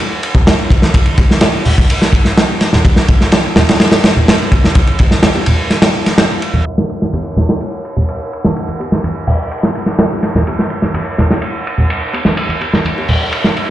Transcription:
0.23 ride
0.35 kick, high bongo, low conga
0.47 snare, ride
0.70 kick, ride
0.82 snare, high bongo, high conga
0.94 kick, ride
1.06 ride, high conga
1.18 kick, ride, high bongo
1.31 snare, high conga
1.41 snare, ride, high conga
1.65 open hi-hat, high bongo, low conga
1.78 kick
1.90 ride
2.01 snare, high bongo
2.13 kick, ride
2.25 snare
2.37 snare, ride
2.49 high bongo
2.61 snare, ride
2.73 snare, high conga, low conga
2.85 kick, ride, high bongo
2.96 snare, high conga
3.08 kick, ride
3.21 snare, high conga
3.32 snare, ride, high bongo, high conga
3.56 snare, ride, low conga
3.69 snare, ride, high bongo
3.80 snare, ride
3.92 snare, ride
4.04 snare, ride
4.17 high bongo, low conga
4.28 snare, ride
4.52 kick, ride, high bongo
4.64 snare, high conga
4.75 kick, ride
4.87 ride, high conga
4.99 kick, ride, high bongo
5.11 snare, high conga
5.23 snare, ride, high conga
5.35 high bongo
5.46 ride, low conga
5.70 snare, ride
5.82 snare, ride, high bongo
6.06 snare, ride
6.18 snare, ride, high bongo
6.42 ride
6.54 high conga, low conga
6.66 ride
6.78 snare, high bongo, high conga
6.89 ride
7.02 snare, high conga
7.13 ride, high bongo, high conga
7.37 snare, ride, low conga
7.49 snare
7.61 ride, high bongo
7.85 ride
7.97 high bongo, low conga
8.08 ride
8.33 ride
8.44 snare, high bongo, high conga
8.56 ride
8.68 ride, high conga
8.80 ride, high bongo
8.92 snare, high conga
9.04 ride, high conga
9.27 open hi-hat, high bongo, low conga
9.51 ride
9.63 snare, high bongo
9.75 ride
9.86 snare
9.99 snare, ride
10.12 high bongo
10.23 snare, ride
10.35 snare, high conga, low conga
10.47 ride, high bongo
10.59 snare, high conga
10.70 ride
10.82 snare, high conga
10.94 ride, high bongo, high conga
11.18 snare, ride, low conga
11.31 snare, high bongo
11.42 ride
11.67 ride
11.78 high bongo, low conga
11.90 ride
12.13 ride, high bongo
12.25 snare, high conga
12.37 ride
12.49 ride, high conga
12.61 ride, high bongo
12.73 snare, high conga
12.85 ride, high conga
12.98 high bongo
13.08 open hi-hat, low conga
13.33 ride
13.44 snare, high bongo
13.57 ride

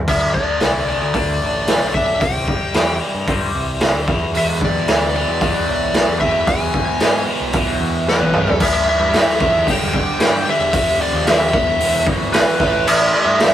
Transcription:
0.08 D2 D3 A3 D4 E5, kick, crash
0.34 A3 D5, kick
0.60 C2 D3 A3 D4 E4, snare, open hi-hat
0.88 D3 A3 D4 D5
1.02 D2
1.14 D3 A3 D4, kick, open hi-hat
1.41 A1 D3
1.67 D3 A3 D4, snare, open hi-hat
1.81 B1
1.88 D5
1.94 D3 A3 D4 E5, kick
2.20 C2 C3 G3 C4 G5, kick, open hi-hat
2.48 G3, kick
2.74 E2 C3 G3 C4 E4, snare, open hi-hat
3.00 C3 G3 C4
3.15 G2
3.27 C3 G3 C4, kick, open hi-hat
3.54 C2 E3
3.80 C3 G3 C4, snare, open hi-hat
3.95 D2
4.07 E2 B2 E3, kick
4.33 E2 B2 E3 E5, open hi-hat
4.61 D5, kick
4.88 D2 E2 B2 E3, snare, open hi-hat
5.15 E2 B2 E3 D5
5.28 E2
5.41 E2 B2 E3, kick, open hi-hat
5.68 B1
5.94 E2 B2 E3, snare, open hi-hat
6.08 E2
6.20 E2 B2 E3 E5, kick
6.45 E2 G#5, kick, open hi-hat
6.49 B2 E3
6.74 kick
7.00 E2 G#2 B2 E3, snare, open hi-hat
7.28 E2 B2 E3
7.40 B1
7.53 E2 B2 E3, kick, open hi-hat
7.80 E2
8.07 E2 B2 E3 B4, snare
8.20 B1, high tom
8.33 E2 B2 E3, mid tom
8.47 floor tom
8.52 A4
8.60 A1 A2 E3 A3 E5, kick, crash
8.87 A2 E3 A3 E5
9.00 G2
9.13 A2 E3 A3, snare, open hi-hat
9.28 snare
9.40 E2 A2 E3 A3, kick
9.67 G1 G2 D3 G3 G5, kick, open hi-hat
9.79 E1
9.93 G2 D3 G3, kick
10.19 G2 D3 G3, snare, open hi-hat
10.47 G2 D3 G3 E5
10.59 E1
10.73 F1 F2 C3 F3, kick, open hi-hat
11.02 F2 C3 F3 D5
11.13 D#2
11.27 F2 C3 F3 E5, snare, open hi-hat
11.53 E1 E2 B2 E3, kick
11.80 E2 B2 E3, open hi-hat
11.94 E1
12.06 E2 B2 E3, kick
12.20 G#1
12.33 E2 B2 E3 B4, snare, open hi-hat
12.59 A1 A2 E3 A3, kick, snare
12.86 A1 A2 E3 A3 E5, crash
13.13 A2 E3 A3 E5
13.25 G2
13.39 A2 E3 A3, snare, open hi-hat

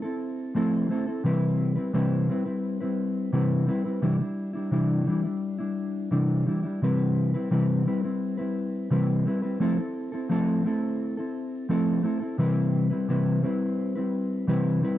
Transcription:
0.02 C4 E4 A4
0.55 F3 A3 C4 E4 A4
0.89 A3 C4 E4 A4
1.06 C4 E4 A4
1.24 C3 E3 G3 C4 E4 B4
1.76 G3 C4 E4 B4
1.93 C3 E3 G3 C4 E4 B4
2.29 G3 C4 E4 B4
2.45 G3 C4 E4 B4
2.80 G3 C4 E4 B4
3.33 C3 E3 G3 C4 E4 B4
3.66 G3 C4 E4 B4
3.84 G3 C4 E4 B4
4.02 C3 E3 G3 D4 E4
4.19 G3 D4 E4
4.53 G3 D4 E4
4.71 C3 E3 G3 D4 E4
5.06 E3 G3 D4 E4
5.23 G3 D4 E4
5.58 G3 D4 E4
6.11 C3 E3 G3 D4 E4
6.46 E3 G3 D4 E4
6.63 G3 D4 E4
6.82 C3 E3 G3 C4 E4 B4
7.34 G3 C4 E4 B4
7.51 C3 E3 G3 C4 E4 B4
7.86 G3 C4 E4 B4
8.03 G3 C4 E4 B4
8.38 G3 C4 E4 B4
8.90 C3 E3 G3 C4 E4 B4
9.25 G3 C4 E4 B4
9.42 G3 C4 E4 B4
9.60 F3 A3 C4 E4 A4
9.77 C4 E4 A4
10.12 C4 E4 A4
10.29 F3 A3 C4 E4 A4
10.64 A3 C4 E4 A4
11.17 C4 E4 A4
11.69 F3 A3 C4 E4 A4
12.03 A3 C4 E4 A4
12.20 C4 E4 A4
12.38 C3 E3 G3 C4 E4 B4
12.90 G3 C4 E4 B4
13.08 C3 E3 G3 C4 E4 B4
13.42 G3 C4 E4 B4
13.96 G3 C4 E4 B4
14.47 C3 E3 G3 C4 E4 B4
14.81 G3 C4 E4 B4

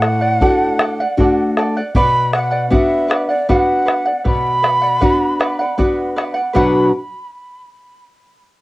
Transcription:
Already playing: A2 F#5
0.02 A4 D5 F#5, bombo rim
0.21 D5 F#5
0.41 A3 D4 F#4 A4 D5 F#5, bombo low
0.79 A4 D5 F#5, bombo rim
1.00 D5 F#5
1.17 A3 D4 F#4 A4 D5 F#5, bombo low
1.57 A4 D5 F#5, bombo rim
1.77 D5 F#5, bombo rim
1.95 B2 B4 D5 F#5 B5, bombo low
2.33 B4 D5 F#5, bombo rim
2.51 D5 F#5
2.70 B3 D4 F#4 B4 D5 E5 F#5, bombo low
3.08 B4 D5 F#5, bombo rim
3.29 D5 F#5
3.49 B3 D4 F#4 B4 D5 F#5, bombo low
3.86 B4 D5 F#5, bombo rim
4.05 D5 F#5, bombo rim
4.24 B2 B4 D5 F#5 B5, bombo low
4.62 B4 D5 F#5, bombo rim
4.82 D5 F#5, bombo rim
5.01 B3 D4 F#4 B4 D5 F#5, bombo low
5.39 B4 D5 F#5, bombo rim
5.59 D5 F#5
5.78 B3 D4 F#4 B4 D5 F#5, bombo rim, bombo low
5.99 bombo rim
6.16 B4 D5 F#5, bombo rim
6.34 D5 F#5
6.53 B2 F#3 D4 F#4 B4 D5 F#5 B5, bombo low

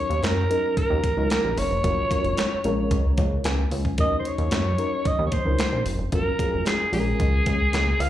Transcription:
Already playing: F#3 C#4 D#4 A#4 C#5
0.10 D#2, closed hi-hat
0.23 F#2 A#4, snare, clap, closed hi-hat, high conga
0.50 F#3 C#4 D#4 A#4, closed hi-hat
0.77 A#4, kick, closed hi-hat
0.90 D#2
1.04 kick, closed hi-hat, muted conga, low conga
1.16 C#2 F#3 C#4 D#4 A#4
1.30 A#4, snare, clap, closed hi-hat, high conga
1.44 A#1, high conga
1.58 F#1 C#5, open hi-hat
1.71 F1
1.84 F#1 F#3 C#4 F4 A#4, kick, closed hi-hat, muted conga
2.10 F#3 C#4 F4 A#4, kick, closed hi-hat, muted conga
2.25 F1, closed hi-hat
2.37 snare, clap, closed hi-hat, high conga
2.64 A#1 G#3 C#4 F4 A#4, closed hi-hat
2.91 C#2, kick, closed hi-hat
3.18 C#2 C#5, kick, closed hi-hat, muted conga, low conga
3.44 C#2 G#5, snare, clap, closed hi-hat, high conga
3.58 high conga
3.71 C#2, open hi-hat
3.85 kick
3.98 D#2 F#3 C#4 D#4 A#4 D#5, kick, closed hi-hat, muted conga
4.19 C5
4.25 C#5, closed hi-hat
4.38 D#2, closed hi-hat
4.51 F#2, snare, clap, closed hi-hat, high conga
4.78 F#3 C#4 D#4 A#4, closed hi-hat
5.05 D#5, kick, closed hi-hat
5.19 D#2
5.26 C#5
5.32 C5, kick, closed hi-hat, muted conga, low conga
5.45 C#2 F#3 C#4 D#4 A#4
5.59 snare, clap, closed hi-hat, high conga
5.72 A#1, high conga
5.86 F#1, open hi-hat
5.99 F1
6.12 F#1 F#3 C#4 F4 A#4, kick, closed hi-hat, muted conga
6.39 F#3 C#4 F4 G#4, kick, closed hi-hat
6.53 F1
6.65 G#4, snare, clap, closed hi-hat, high conga
6.93 A#1 G#3 C#4 F4 G#4, open hi-hat
7.00 A#4
7.20 C#2, kick, closed hi-hat
7.46 C#2, kick, closed hi-hat, muted conga, low conga
7.73 C#2, snare, clap, closed hi-hat, high conga
7.87 high conga
8.00 C#2 F5, open hi-hat

